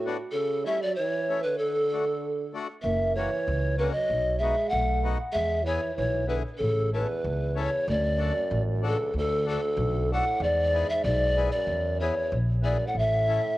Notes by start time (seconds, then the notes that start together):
Already playing: A2 F#4
0.05 B3 D4 F#4
0.32 C#3 A4
0.64 G3 A3 C#4 E4 E5
0.82 F#3 D5
0.96 E3 C#5
1.28 A3 C#4 E4
1.43 D3 B4
1.58 D3 A4
1.93 A3 D4 F#4
2.53 A3 D4 F#4
2.82 F#1 A#3 E5
3.15 E3 A#3 C#4 F#4 C#5
3.48 C#2
3.78 D3 A#3 C#4 F#4 B4
3.92 F#3 D#5
4.10 B1
4.39 G#3 B3 D#4 E5
4.43 F#4
4.69 B1 A3 F#5
5.03 B3 D#4 F#4
5.33 E2 G#3 E5
5.64 E3 B3 E4 G#4 C#5
5.95 B1 E3 C#5
6.27 D3 B3 E4 G#4 B4
6.58 A1 C#3 A4
6.93 E2 C#4 E4 A4 B4
7.24 C#2
7.55 E2 C#4 E4 A4
7.60 C#5
7.88 D2 F#2 D5
8.17 D4 F#4 A4
8.51 A1
8.82 C#2 D4 F#4 A4
8.88 A4
9.13 D2
9.18 A4
9.46 D2 D4 F#4 A4
9.77 B1
10.12 A2 D4 F#4 A4 F#5
10.40 E2 G#2 D5
10.74 B3 E4 G#4
10.89 G#2 E5
11.04 B1 G#2 D5
11.37 B3 E4 G#4
11.51 F#2 D5
11.67 E2
12.00 E2 B3 E4 G#4 C#5
12.32 A#1
12.62 B3 E4 G#4 D5
12.67 F#2
12.87 A2 F#5
12.95 A1 A2 E5
13.27 C#4 E4 A4